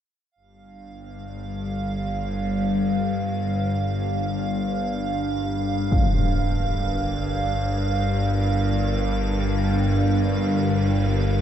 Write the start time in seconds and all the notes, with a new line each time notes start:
0.32 G3 F5
0.36 G1 G2
0.55 D4
3.22 G4
3.59 A#4
5.92 impact